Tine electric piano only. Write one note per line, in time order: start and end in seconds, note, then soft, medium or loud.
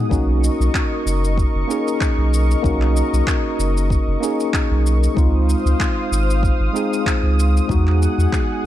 0.00 0.13 G#3 medium
0.00 0.14 B3 medium
0.00 0.12 D#4 medium
0.00 0.14 G#4 medium
0.09 1.65 A#3 medium
0.09 1.66 C#4 medium
0.09 1.66 D#4 medium
0.09 1.67 F#4 loud
1.68 2.60 A#3 medium
1.68 2.60 C#4 medium
1.68 2.61 D#4 medium
1.68 2.62 G#4 medium
2.62 4.18 A#3 medium
2.62 4.18 C#4 medium
2.62 4.19 D#4 medium
2.62 4.19 F#4 medium
4.21 5.13 A#3 medium
4.21 5.13 C#4 medium
4.21 5.14 D#4 medium
4.21 5.14 G#4 medium
5.15 6.70 G#3 medium
5.15 6.71 C4 medium
5.15 6.71 D#4 medium
5.15 6.72 F4 loud
6.73 7.65 G#3 medium
6.73 7.66 C4 medium
6.73 7.66 D#4 medium
6.73 7.67 G#4 medium
7.68 8.66 G#3 medium
7.68 8.66 B3 medium
7.68 8.66 D#4 medium
7.68 8.66 F#4 loud